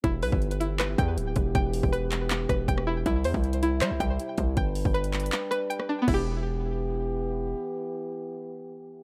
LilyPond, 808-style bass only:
\new Staff \with { instrumentName = "808-style bass" } { \clef bass \time 4/4 \key e \minor \tempo 4 = 159 e,,8 b,,16 g,,4.~ g,,16 e,8 d,,8 e,,8 | e,,8. e,,4.~ e,,16 e,,8 e,,4 | c,8 e,16 c,4~ c,16 g16 c,16 c,8 r8 c,8 | g,,8. g,,4~ g,,16 r2 |
e,,1 | r1 | }